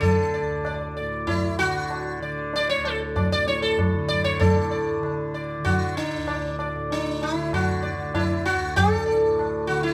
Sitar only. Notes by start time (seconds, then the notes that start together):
0.01 A4
0.34 D5
0.66 D5
0.97 D5
1.27 E4
1.59 F#4
2.22 D5
2.56 D5
2.69 C#5
2.85 A4
3.16 D5
3.32 D5
3.48 C#5
3.62 A4
4.08 D5
4.24 C#5
4.39 A4 D5
4.71 D5
5.34 D5
5.65 F#4
5.97 D4
6.29 D5
6.60 D5
6.92 D4
7.23 E4
7.54 F#4
7.83 D5
8.15 E4
8.45 F#4
8.76 A4
9.06 D5
9.67 F#4
9.83 E4